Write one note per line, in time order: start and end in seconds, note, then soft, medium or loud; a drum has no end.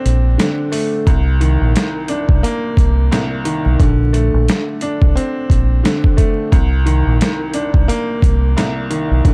0.00 0.38 D3 medium
0.00 0.72 A3 medium
0.00 1.07 C4 medium
0.00 0.73 D4 medium
0.05 0.36 A#1 medium
0.05 closed hi-hat medium
0.38 1.07 D3 medium
0.38 snare loud
0.38 closed hi-hat medium
0.72 1.06 A3 medium
0.72 open hi-hat medium
1.07 2.43 C2 medium
1.07 1.57 C2 loud
1.07 kick loud
1.07 closed hi-hat medium
1.41 2.77 D#3 medium
1.41 closed hi-hat medium
1.61 1.74 A#1 medium
1.76 snare loud
1.76 closed hi-hat medium
2.08 3.46 D4 medium
2.08 closed hi-hat medium
2.29 2.42 C2 medium
2.29 kick medium
2.43 3.80 A#3 loud
2.43 closed hi-hat medium
2.77 3.08 C2 loud
2.77 kick medium
2.77 closed hi-hat medium
3.11 3.80 C2 medium
3.11 snare loud
3.11 closed hi-hat medium
3.45 3.79 D#3 medium
3.45 closed hi-hat medium
3.66 3.79 B1 medium
3.80 4.29 A#1 loud
3.80 5.16 D3 medium
3.80 kick loud
3.80 closed hi-hat medium
4.13 5.50 A3 medium
4.13 closed hi-hat medium
4.34 4.47 A#1 medium
4.48 snare loud
4.48 closed hi-hat medium
4.81 6.18 D4 medium
4.81 closed hi-hat medium
5.02 5.15 C2 medium
5.02 kick medium
5.15 6.52 C4 medium
5.15 closed hi-hat medium
5.50 5.81 A#1 medium
5.50 kick medium
5.50 closed hi-hat medium
5.84 6.52 D3 medium
5.84 snare loud
5.84 closed hi-hat medium
6.04 kick medium
6.17 6.52 A3 medium
6.17 kick loud
6.17 closed hi-hat medium
6.52 7.89 C2 medium
6.52 7.02 C2 loud
6.52 kick loud
6.52 closed hi-hat medium
6.86 8.22 D#3 medium
6.86 closed hi-hat medium
7.07 7.19 A#1 medium
7.21 snare loud
7.21 closed hi-hat medium
7.54 8.91 D4 medium
7.54 closed hi-hat medium
7.74 7.87 C2 medium
7.74 kick medium
7.88 9.25 A#3 loud
7.88 closed hi-hat medium
8.22 8.54 C2 medium
8.22 kick medium
8.22 closed hi-hat medium
8.57 9.25 C2 medium
8.57 snare loud
8.57 closed hi-hat medium
8.90 9.25 D#3 medium
8.90 closed hi-hat medium
9.11 9.24 B1 medium
9.25 9.34 A#1 loud
9.25 9.34 D3 medium
9.25 kick loud
9.25 closed hi-hat medium